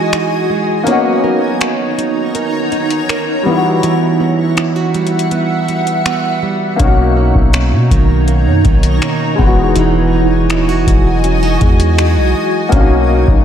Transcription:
Already playing: nylon-string guitar E3 G#3 D#4 F#4, grand piano G#3 B3 D#4 F#4, ambient pad F#4 D#5 G#5
0.13 nylon-string guitar D#4, finger snap, closed hi-hat
0.50 nylon-string guitar G#3
0.84 grand piano A#3 C#4, nylon-string guitar B3, ambient pad D#4 C#5 A#5, closed hi-hat
0.89 grand piano D#4 F#4
1.24 nylon-string guitar A#4
1.61 nylon-string guitar C#5, finger snap, closed hi-hat
1.98 nylon-string guitar D#4, closed hi-hat
2.35 nylon-string guitar A#4, closed hi-hat
2.72 nylon-string guitar D#4, closed hi-hat
2.90 closed hi-hat
3.09 nylon-string guitar A#4, finger snap, closed hi-hat
3.43 nylon-string guitar E3, grand piano G3 B3, ambient pad E5 F#5
3.48 grand piano E4 F4
3.57 grand piano F#4
3.83 nylon-string guitar E3, closed hi-hat
4.20 nylon-string guitar B3
4.57 nylon-string guitar E4, finger snap, closed hi-hat
4.76 nylon-string guitar F#4
4.94 nylon-string guitar G3, closed hi-hat
5.07 closed hi-hat
5.19 closed hi-hat
5.31 nylon-string guitar B3, closed hi-hat
5.68 nylon-string guitar G3, closed hi-hat
5.87 closed hi-hat
6.05 nylon-string guitar B3, finger snap, closed hi-hat
6.43 nylon-string guitar G3
6.76 808-style bass B1, nylon-string guitar B2, grand piano A#3 C#4, ambient pad D#4 C#5 A#5, kick, closed hi-hat
6.81 grand piano D#4 F#4
7.17 nylon-string guitar A#3
7.35 808-style bass B1, kick
7.53 nylon-string guitar C#4, finger snap, closed hi-hat
7.72 808-style bass B2
7.91 808-style bass B1, nylon-string guitar D#3, kick, closed hi-hat
8.28 nylon-string guitar A#3, closed hi-hat
8.46 808-style bass F#2
8.65 808-style bass B1, nylon-string guitar D#3, kick, closed hi-hat
8.83 closed hi-hat
9.02 nylon-string guitar A#3, finger snap, closed hi-hat
9.35 808-style bass E1, nylon-string guitar E3, grand piano G#3 B3, ambient pad F#4 D#5 G#5, kick
9.41 grand piano D#4 F#4
9.76 808-style bass E1, nylon-string guitar E3, closed hi-hat
10.13 nylon-string guitar D#4
10.50 808-style bass D#1, nylon-string guitar E4, finger snap, closed hi-hat
10.69 808-style bass E1, nylon-string guitar F#4
10.87 808-style bass E1, nylon-string guitar G#3, kick, closed hi-hat
11.24 nylon-string guitar C#4, closed hi-hat
11.43 nylon-string guitar D#4
11.61 808-style bass E2, nylon-string guitar G#3, kick, closed hi-hat
11.80 closed hi-hat
11.98 nylon-string guitar D#4, finger snap, closed hi-hat
12.16 808-style bass B1
12.35 nylon-string guitar G#3
12.69 808-style bass B1, nylon-string guitar B2, grand piano A#3 C#4, ambient pad D#4 C#5 A#5, kick, closed hi-hat
12.74 grand piano D4 F#4
12.81 grand piano D#4
13.09 nylon-string guitar A#3
13.28 808-style bass B1, kick

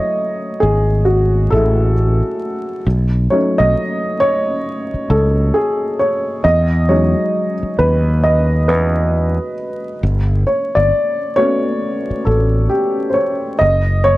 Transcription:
Already playing: upright piano F#3 A3 E4 C#5 D#5
0.60 fretless electric bass G#1, upright piano G#4
1.05 upright piano F#4
1.50 fretless electric bass A1, upright piano A3 E4 G#4 A4
2.87 fretless electric bass B1
3.30 upright piano F#3 A3 C#4 D#4 C#5
3.58 fretless electric bass B1, upright piano D#5
4.20 upright piano C#5
4.94 muted fretless electric bass stroke
5.10 fretless electric bass C#2, upright piano A4
5.54 upright piano G#4
5.99 upright piano C#5
6.44 fretless electric bass E2, upright piano D#5
6.89 upright piano F#3 G#3 D#4 C#5
7.63 muted fretless electric bass stroke
7.79 fretless electric bass D#2, upright piano B4
8.24 upright piano D#5
8.68 fretless electric bass E2, upright piano B4
10.03 fretless electric bass G1
10.47 upright piano C#5
10.75 fretless electric bass G1, upright piano D5
11.36 upright piano A3 B3 C#4 F#4 C#5
12.10 muted fretless electric bass stroke
12.25 fretless electric bass A1, upright piano A4
12.69 upright piano G4
13.10 upright piano C5
13.14 upright piano C#5
13.59 fretless electric bass F#1, upright piano D#5
14.04 upright piano C#5

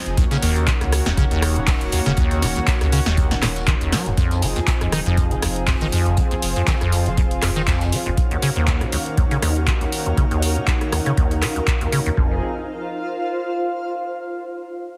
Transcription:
Already playing: analog synth pad F3 C4 D#4 G#4
0.06 sub bass F1, closed hi-hat
0.17 acid bass D#2, analog synth pad D#3 A#3 C#4 F#4, kick, closed hi-hat
0.31 acid bass C#3, snare, closed hi-hat
0.42 sub bass D#1, acid bass D#2, closed hi-hat, open hi-hat
0.56 closed hi-hat
0.67 acid bass D#3, kick, snare, clap, closed hi-hat
0.81 acid bass C#2, sub bass C#2, cross-stick, closed hi-hat
0.92 cross-stick, snare, closed hi-hat, open hi-hat
1.06 sub bass D#1, acid bass D#2, snare, closed hi-hat
1.17 acid bass C#3, kick, closed hi-hat
1.31 acid bass D#2, closed hi-hat
1.42 sub bass D#1, cross-stick, closed hi-hat, open hi-hat
1.56 acid bass D#3, closed hi-hat
1.67 acid bass C#2, kick, snare, clap, closed hi-hat, open hi-hat
1.81 sub bass D#1, closed hi-hat
1.92 acid bass D#2, closed hi-hat, open hi-hat
2.06 sub bass D#1, acid bass C#3, snare, closed hi-hat
2.16 acid bass D#2, kick, closed hi-hat
2.31 closed hi-hat
2.42 sub bass D#1, acid bass D#3, snare, closed hi-hat, open hi-hat
2.56 acid bass C#2, closed hi-hat
2.67 kick, snare, clap, closed hi-hat
2.81 sub bass C#2, acid bass D#2, cross-stick, closed hi-hat
2.92 acid bass C#3, closed hi-hat, open hi-hat
3.06 sub bass D#1, acid bass D#2, snare, closed hi-hat
3.17 kick, closed hi-hat
3.31 acid bass D#3, snare, closed hi-hat
3.42 sub bass D#1, acid bass A#2, cross-stick, snare, clap, closed hi-hat, open hi-hat
3.56 snare, closed hi-hat
3.67 acid bass D#3, kick, clap, closed hi-hat
3.80 sub bass D#1, acid bass D#2, closed hi-hat
3.92 acid bass F#3, snare, closed hi-hat, open hi-hat
4.06 sub bass D#1, acid bass D#2, closed hi-hat
4.17 acid bass F2, analog synth pad F3 C4 D#4 G#4, kick, closed hi-hat
4.31 snare, closed hi-hat
4.42 sub bass F1, acid bass F3, closed hi-hat, open hi-hat
4.53 acid bass D#2, ambient pad F5, closed hi-hat
4.62 ambient pad C5
4.67 kick, snare, clap, closed hi-hat
4.81 sub bass D#1, acid bass F2, cross-stick, closed hi-hat
4.92 acid bass D#3, cross-stick, snare, closed hi-hat, open hi-hat
5.06 sub bass F1, acid bass F2, closed hi-hat
5.17 kick, closed hi-hat
5.31 acid bass F3, closed hi-hat
5.42 sub bass F1, acid bass D#2, cross-stick, closed hi-hat, open hi-hat
5.56 closed hi-hat
5.67 acid bass F2, kick, snare, clap, closed hi-hat, open hi-hat
5.81 sub bass F1, acid bass D#3, closed hi-hat
5.92 acid bass F2, closed hi-hat, open hi-hat
6.06 sub bass F1, closed hi-hat
6.16 acid bass F3, analog synth pad F4, kick, closed hi-hat
6.31 acid bass D#2, closed hi-hat
6.42 sub bass F1, closed hi-hat, open hi-hat
6.56 acid bass F2, closed hi-hat
6.67 acid bass D#3, kick, snare, clap, closed hi-hat
6.81 sub bass D#1, acid bass F2, cross-stick, closed hi-hat
6.92 closed hi-hat, open hi-hat
7.06 sub bass F1, acid bass F3, closed hi-hat
7.17 acid bass D#2, kick, closed hi-hat
7.31 closed hi-hat
7.42 sub bass F1, acid bass F2, cross-stick, snare, clap, closed hi-hat, open hi-hat
7.56 acid bass D#3, snare, closed hi-hat
7.67 acid bass F2, kick, snare, clap, closed hi-hat
7.81 sub bass F1, snare, closed hi-hat
7.92 acid bass F3, closed hi-hat, open hi-hat
8.06 sub bass F1, acid bass D#2, closed hi-hat
8.17 analog synth pad D#3 A#3 C#4 F#4, ambient pad D#4, kick, closed hi-hat
8.31 acid bass D#2, closed hi-hat
8.42 acid bass C#3, open hi-hat
8.56 acid bass D#2, closed hi-hat
8.65 ambient pad A#4, kick, clap, closed hi-hat
8.81 acid bass D#3, cross-stick, closed hi-hat
8.92 acid bass C#2, open hi-hat
9.06 closed hi-hat
9.17 acid bass D#2, kick, closed hi-hat
9.31 acid bass C#3, closed hi-hat
9.42 acid bass D#2, cross-stick, open hi-hat
9.56 closed hi-hat
9.67 acid bass D#3, kick, clap, closed hi-hat
9.81 acid bass C#2, closed hi-hat
9.92 open hi-hat
10.06 acid bass D#2, closed hi-hat
10.17 acid bass C#3, kick, closed hi-hat
10.31 acid bass D#2, closed hi-hat
10.42 open hi-hat
10.56 acid bass D#3, closed hi-hat
10.67 acid bass C#2, kick, clap, closed hi-hat
10.81 cross-stick, closed hi-hat
10.92 acid bass D#2, cross-stick, open hi-hat
11.06 acid bass C#3, closed hi-hat
11.17 acid bass D#2, kick, closed hi-hat
11.31 closed hi-hat
11.42 acid bass D#3, cross-stick, clap, open hi-hat
11.56 acid bass C#2, closed hi-hat
11.67 kick, clap, closed hi-hat
11.81 acid bass D#2, closed hi-hat
11.92 acid bass C#3, open hi-hat
12.06 acid bass D#2, closed hi-hat
12.17 sub bass F1, acid bass F2, analog synth pad F3 C4 D#4 G#4, ambient pad F4, kick
12.26 ambient pad C5
12.33 ambient pad F5

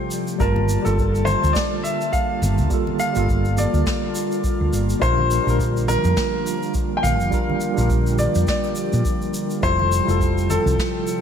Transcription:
Already playing: analog synth pad C3 F3 G3 A3 G5, tine electric piano G3 F4 G4 A4
0.11 shaker
0.27 shaker
0.38 fretless electric bass G1, analog synth pad D3 A#3 F4 A5, tine electric piano G3 A#3 F4 A5, grand piano A#4, kick, shaker
0.56 high conga
0.69 shaker
0.82 fretless electric bass G1, tine electric piano G3 A#3, grand piano A4, shaker
0.87 tine electric piano F4 A4
0.98 kick, shaker
1.15 shaker
1.25 grand piano C5, high conga, shaker
1.44 fretless electric bass D2, shaker
1.53 grand piano D5, kick, snare, shaker
1.83 grand piano E5, shaker
2.01 shaker
2.13 grand piano F5, kick, shaker
2.42 fretless electric bass G1, high conga, shaker
2.58 fretless electric bass D2, shaker
2.70 tine electric piano G3 A#3 F4 A4, kick, shaker
2.87 high conga
3.00 grand piano F5, shaker
3.13 fretless electric bass G1, tine electric piano G3 A#3, shaker
3.17 tine electric piano F4 A4
3.29 kick, shaker
3.45 shaker
3.58 grand piano D5, high conga, shaker
3.74 fretless electric bass D2, shaker
3.86 kick, snare, shaker
4.15 shaker
4.32 shaker
4.44 kick, shaker
4.61 fretless electric bass D2
4.73 fretless electric bass G1, shaker
4.90 shaker
4.99 fretless electric bass A#1, analog synth pad D3 F3 G3, tine electric piano G3 D4 F4 A#4, grand piano C5, kick, shaker
5.18 high conga
5.31 shaker
5.43 fretless electric bass A#1, tine electric piano G3 D4
5.48 tine electric piano F4 A#4, shaker
5.60 kick, shaker
5.77 shaker
5.88 grand piano A#4, high conga, shaker
6.04 fretless electric bass F2, shaker
6.17 kick, snare, shaker
6.47 shaker
6.62 shaker
6.74 kick, shaker
6.97 grand piano G5
7.03 fretless electric bass A#1, grand piano F5, high conga, shaker
7.20 fretless electric bass F1, shaker
7.31 tine electric piano G3 D4 F4 A#4, analog synth pad G4, kick, shaker
7.50 high conga
7.61 shaker
7.74 fretless electric bass A#1, tine electric piano G3 D4, shaker
7.78 tine electric piano F4 A#4
7.90 kick, shaker
8.07 shaker
8.18 grand piano D5, high conga, shaker
8.35 fretless electric bass F2, shaker
8.47 grand piano D5, kick, snare, shaker
8.64 shaker
8.75 shaker
8.93 fretless electric bass A#2, shaker
9.05 kick, shaker
9.22 shaker
9.34 shaker
9.50 shaker
9.61 fretless electric bass F1, analog synth pad C3 A4 G5, tine electric piano G3 E4 F4 A4, grand piano C5, kick, shaker
9.79 high conga
9.92 shaker
10.04 tine electric piano G3 E4
10.08 fretless electric bass F1, tine electric piano F4 A4, shaker
10.21 kick, shaker
10.38 shaker
10.50 grand piano A4, high conga, shaker
10.66 fretless electric bass C2, shaker
10.78 kick, snare, shaker
11.07 shaker

